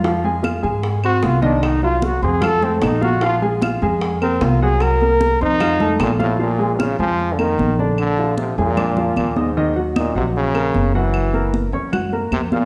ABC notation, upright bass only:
X:1
M:4/4
L:1/8
Q:1/4=151
K:Fphr
V:1 name="Upright bass" clef=bass
F,,3 A,,3 C,,2- | C,,3 F,,3 B,,,2- | B,,,3 F,,3 C,,2- | C,,3 F,,3 B,,,2- |
B,,,3 F,,3 B,,,2- | B,,,3 F,,3 E,,2- | E,,3 B,,,3 G,,,2- | G,,,3 G,,3 F,,2 |]